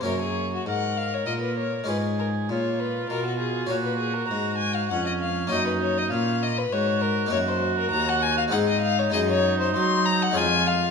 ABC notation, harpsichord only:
X:1
M:3/4
L:1/8
Q:1/4=99
K:F#
V:1 name="Harpsichord"
[A,CF]6 | [G,CE]6 | [CF]6 | [A,CF]6 |
[K:Abmix] [B,EB]4 [A,CEA]2 | [A,EA]4 [A,DA]2 |]
V:2 name="Harpsichord" clef=bass
F,,2 G,,2 A,,2 | G,,2 A,,2 B,,2 | A,,2 G,,2 E,,2 | F,,2 A,,2 G,,2 |
[K:Abmix] G,,2 E,,2 A,,2 | G,,2 G,2 F,,2 |]